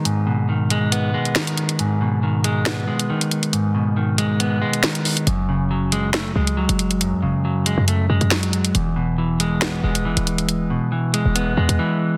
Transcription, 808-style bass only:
X:1
M:4/4
L:1/16
Q:1/4=138
K:G#m
V:1 name="808-style bass" clef=bass
z16 | z16 | z16 | F,,,8- F,,,2 C,,3 F,,,3- |
F,,, F,, F,,, z4 F,,3 F,, F,,4- F,, | E,,,8 G,,, E,,, E,,,3 D,,,3- | D,,,3 z4 E,,,2 F,,, E,, E,, z4 |]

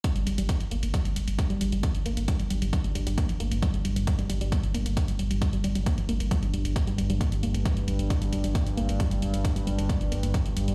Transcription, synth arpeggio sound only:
X:1
M:4/4
L:1/16
Q:1/4=134
K:Gm
V:1 name="Synth arpeggio sound" clef=bass
G, G, G, G, B, F, B, B, G, G, G, G, G, G, G, G, | B, F, B, B, G, G, G, G, G, G, G, G, B, F, B, B, | G, G, G, G, G, G, G, G, B, F, B, B, G, G, G, G, | G, G, G, G, B, F, B, B, G, G, G, G, G, G, G, G, |
B, F, B, B, G, G, G, G, G, G, G, G, B, F, B, B, | G, G, G, G, G, G, G, G, B, F, B, B, G, G, G, G, |]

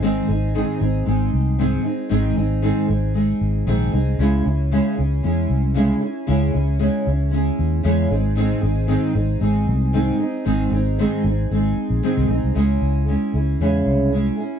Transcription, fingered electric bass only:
X:1
M:4/4
L:1/16
Q:"Swing 16ths" 1/4=115
K:Ab
V:1 name="Fingered electric bass" clef=bass
A,,,2 A,,,3 z A,,,2 A,,,2 C,,4 z2 | A,,,2 A,,,3 z A,,,4 A,,,2 B,,,2 C,,2 | D,,2 D,,3 z D,,2 _F,,2 C,,4 z2 | D,,2 D,,3 z D,,4 E,,2 _F,,2 A,,,2- |
A,,,2 A,,,3 z A,,,2 A,,,2 C,,4 z2 | A,,,2 A,,,3 z A,,,2 A,,,2 z B,,, z C,, B,,, C,, | D,,2 D,,3 z D,,2 _F,,2 C,,4 z2 |]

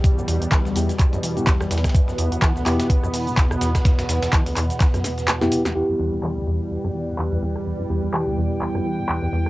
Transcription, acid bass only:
X:1
M:4/4
L:1/16
Q:"Swing 16ths" 1/4=126
K:Em
V:1 name="Acid bass" clef=bass
E,, F,, E,, E,, E, D,, E,, F,, E,, F,, E, E,, E,, E,, E,, G,, | E,, F,, E,, E,, E, D,, E,, F,, E,, F,, E, E,, E,, E,, E,, G,, | E,, F,, E,, E,, E, D,, E,, F,, E,, F,, E, G,, E,, F,, E, E,, | E,, F,, E,, E,, E, D,, E,, F,, E,, F,, E, E,, E,, E,, E,, G,, |
E,, F,, E,, E,, E, D,, E,, F,, E,, F,, E, E,, E,, E,, E,, G,, |]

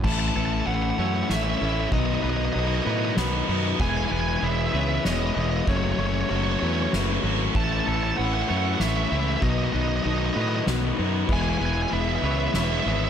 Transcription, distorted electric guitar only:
X:1
M:3/4
L:1/8
Q:1/4=96
K:Alyd
V:1 name="Distorted electric guitar"
[A,,E,A,CE] [A,,E,A,CE] [A,,E,A,CE] [A,,E,A,CE] [A,,E,A,CE] [A,,E,A,CE] | [B,,D,F,B,D] [B,,D,F,B,D] [B,,D,F,B,D] [B,,D,F,B,D] [B,,D,F,B,D] [B,,D,F,B,D] | [E,G,B,E] [E,G,B,E] [E,G,B,E] [E,G,B,E] [E,G,B,E] [E,G,B,E] | [F,A,CF] [F,A,CF] [F,A,CF] [F,A,CF] [F,A,CF] [F,A,CF] |
[A,,E,A,CE] [A,,E,A,CE] [A,,E,A,CE] [A,,E,A,CE] [A,,E,A,CE] [A,,E,A,CE] | [B,,D,F,B,D] [B,,D,F,B,D] [B,,D,F,B,D] [B,,D,F,B,D] [B,,D,F,B,D] [B,,D,F,B,D] | [E,G,B,E] [E,G,B,E] [E,G,B,E] [E,G,B,E] [E,G,B,E] [E,G,B,E] |]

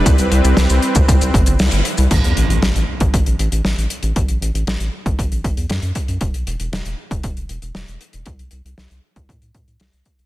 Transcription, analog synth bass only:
X:1
M:4/4
L:1/16
Q:1/4=117
K:Amix
V:1 name="Analog synth bass" clef=bass
=C,, C,, C,, C,, C,, C,, z C,, C,, C,, G,,, G,,, C,, G,,, z C,, | A,,, E,, A,,, A,,, A,,, A,,, z A,,, A,,, A,,, A,,, A,,, A,,, A,,, z A,,, | A,,, A,,, A,,, A,,, A,,, A,,, z A,,, A,,, A,,, A,,, E,, F,, F,, z F,, | E,,, B,,, E,,, E,,, E,,, E,,, z E,,, E,,, E,,, E,,, E,,, E,,, E,,, z E,,, |
=C,, C,, C,, C,, C,, C,, z C,, A,, A,, A,, A,, C,, C,, z C,, |]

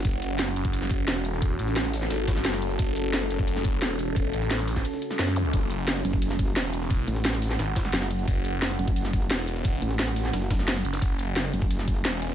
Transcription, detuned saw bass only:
X:1
M:4/4
L:1/8
Q:1/4=175
K:F#m
V:1 name="Detuned saw bass" clef=bass
F,,,3 F,,,3 E,,,2- | E,,, A,,,3 G,,,2 F,,,2 | F,,,3 F,,,3 E,,,2- | E,,, A,,,3 z2 F,,2 |
F,,,3 z3 E,,,2- | E,,, z3 G,,,2 z2 | F,,,3 z3 E,,,2- | E,,, z6 F,,, |
F,,,3 z3 E,,,2 |]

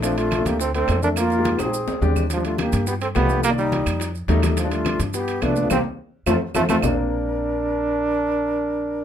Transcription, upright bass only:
X:1
M:4/4
L:1/8
Q:1/4=212
K:Bb
V:1 name="Upright bass" clef=bass
B,,,3 D,,3 F,,2- | F,,3 B,,,2 D,, E,,2- | E,,3 G,,3 C,,2- | C,,3 F,,3 E,,2- |
E,,3 G,,3 C,,2 | C,, z3 F,, z F,, F,, | B,,,8- | B,,,8 |]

